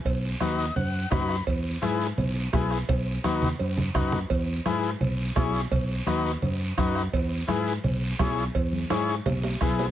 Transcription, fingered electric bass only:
X:1
M:4/4
L:1/8
Q:1/4=170
K:E
V:1 name="Fingered electric bass" clef=bass
B,,,2 D,,2 F,,2 F,,2 | E,,2 G,,2 B,,,2 B,,,2 | B,,,2 D,,2 F,,2 F,,2 | E,,2 G,,2 B,,,2 B,,,2 |
B,,,2 D,,2 F,,2 F,,2 | E,,2 G,,2 B,,,2 B,,,2 | E,,2 G,,2 B,,,2 B,,,2 |]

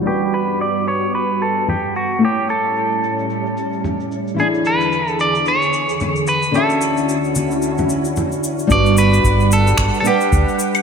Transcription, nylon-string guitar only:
X:1
M:4/4
L:1/8
Q:"Swing 16ths" 1/4=111
K:Glyd
V:1 name="Nylon-string guitar"
[G,DFB]8 | [A,EGc]8 | [E,DE^G]8 | [D,CFe]8 |
[G,DFB]4- [G,DFB] [G,DBf]3 |]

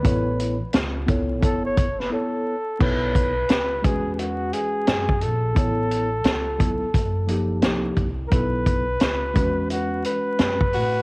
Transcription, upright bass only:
X:1
M:4/4
L:1/16
Q:"Swing 16ths" 1/4=87
K:Edor
V:1 name="Upright bass" clef=bass
A,,,3 z C,,4 F,,,4 z4 | B,,,4 C,,2 E,,4 z2 F,,2 ^A,,,2 | A,,,4 C,,3 z F,,,4 =C,,2 C,,2 | B,,,4 C,,2 E,,4 z2 F,,2 A,,2 |]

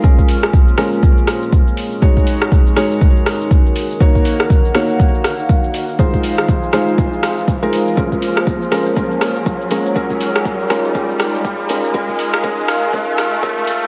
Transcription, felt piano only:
X:1
M:4/4
L:1/16
Q:"Swing 16ths" 1/4=121
K:Bbm
V:1 name="Felt piano"
[A,DFB]6 [A,DFB]8- [A,DFB]2 | [A,EGd]6 [A,EGd]8- [A,EGd]2 | [B,EGd]6 [B,EGd]8- [B,EGd]2 | [A,EFc]6 [A,EFc]6- [A,EFc] [A,EFB]3 |
[A,DFB]6 [A,DFB]2 [A,DFB]6 [A,DFB]2 | [A,DFB]6 [A,DFB]2 [A,DFB]6 [A,DFB]2 | [A,DFB]4 [A,DFB]4 [A,DFB]4 [A,DFB]4 |]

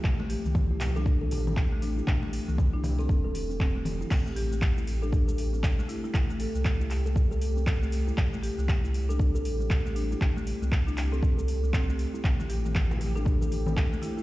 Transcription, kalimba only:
X:1
M:4/4
L:1/16
Q:"Swing 16ths" 1/4=118
K:Am
V:1 name="Kalimba"
z A, z A, z E z A z A z C z A, z E | z A, z A, z E z A z A z C z A, z E | z A, z A, z E z A z A z C z A, z E | z A, z A, z E z A z A z C z A, z E |
z A, z A, z E z A z A z C z A, z E | z A, z A, z E z A z A z C z A, z E | z A, z A, z E z A z A z C z A, z E |]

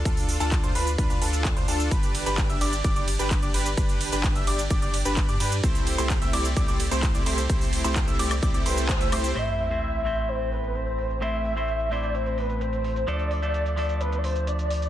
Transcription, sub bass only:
X:1
M:4/4
L:1/16
Q:1/4=129
K:Am
V:1 name="Sub bass" clef=bass
D,,3 D,,2 D,, D,,2 D,, D,, D,,3 D,, D,,2 | G,,,3 G,,,2 G,,, G,,,2 G,,, G,,,2 G,,,2 G,,, G,,,2 | G,,,3 G,,,2 G,,, G,,,2 G,,, G,,,2 G,,,2 G,, G,,2 | C,,3 C,,2 C,, C,,2 C,, C,,2 C,,2 C,, C,,2 |
C,,3 C,,2 C,, C,,2 C,, C,, C,,3 C,, C,,2 | A,,,16- | A,,,16 | D,,16 |]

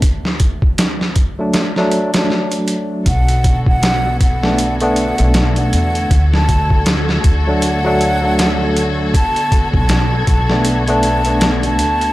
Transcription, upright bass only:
X:1
M:4/4
L:1/16
Q:"Swing 16ths" 1/4=79
K:Bdor
V:1 name="Upright bass" clef=bass
D,,8 z8 | B,,,8- B,,,3 B,,,3 E,,2 | D,,6 D,,8- D,,2 | z3 B,,,3 B,,,8 D,,2 |]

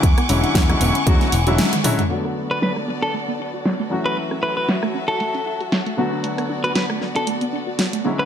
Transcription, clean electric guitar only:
X:1
M:4/4
L:1/16
Q:"Swing 16ths" 1/4=116
K:Bdor
V:1 name="Clean electric guitar"
z16 | z3 B B z2 A z6 z B | z2 B B z3 A4 z4 z | z3 B B z2 A z6 z B |]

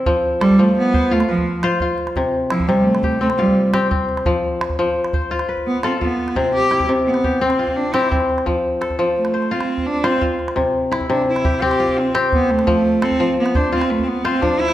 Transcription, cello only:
X:1
M:12/8
L:1/16
Q:3/8=114
K:Flyd
V:1 name="Cello"
z4 G,2 A,2 B,4 A,2 F,4 z6 | z4 F,2 G,2 A,4 A,2 G,4 z6 | z16 B,2 C2 B,4 | C2 G4 z2 B,4 C4 D2 E2 z4 |
z8 A,4 C4 D2 C2 z4 | z6 D2 E4 G4 C2 z2 B,2 A,2- | A,4 C4 B,2 D2 C2 A,3/2 C/2 B,2 C2 D2 E2 |]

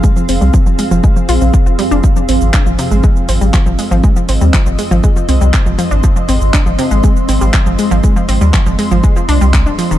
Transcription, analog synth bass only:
X:1
M:4/4
L:1/16
Q:1/4=120
K:Ab
V:1 name="Analog synth bass" clef=bass
z2 F,,, C,, z F,,, z F,,, z2 B,,, B,,, z F,,, z F,,, | z2 A,,, A,,, z A,,, z A,,, z2 A,,, A,,, z A,,, z A,,, | z2 A,,, E,, z A,,, z A,,, z2 C,, C,, z A,,, z A,,, | z2 A,,, A,,, z A,,, z A,,, z2 A,,, A,,, z A,,, z A,,, |
z2 A,,, E,, z A,,, z A,,, z2 C,, C,,2 E,,, z E,,, |]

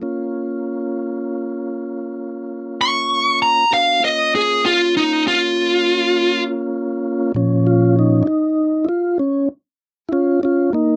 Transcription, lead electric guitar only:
X:1
M:12/8
L:1/8
Q:3/8=66
K:Bbm
V:1 name="Lead electric guitar"
z8 z d'2 b | f e A F E F4 z3 | z12 |]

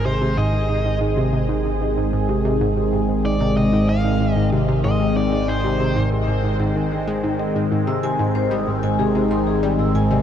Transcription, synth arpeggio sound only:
X:1
M:4/4
L:1/16
Q:1/4=94
K:Ab
V:1 name="Synth arpeggio sound" clef=bass
C, C, A,, A,, A,, A,, A,, C, C, A,, A,, A,, A,, A,, C, C, | A,, A,, A,, A,, A,, C, C, A,, A,, A,, A,, A,, C, C, A,, A,, | A,, A,, A,, C, C, A,, A,, A,, A,, A,, E, =D, A, A,, A, A,, | A,, C, C, A,, A,, G, A,, A,, C, C, A,, A,, G, A,, A,, C, |]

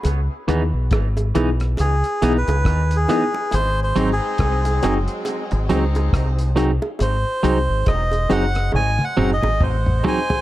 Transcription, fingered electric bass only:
X:1
M:4/4
L:1/16
Q:"Swing 16ths" 1/4=69
K:G#phr
V:1 name="Fingered electric bass" clef=bass
C,, z D,, B,,, G,,,2 B,,,2 C,, z B,,, C,, D,,2 z2 | G,,,2 G,,, z ^B,,,2 F,,, z2 G,,, C,,2 B,,,3 z | G,,, z ^B,,, G,,, E,,,2 F,,,2 G,,, z F,,, G,,, A,,,2 z2 |]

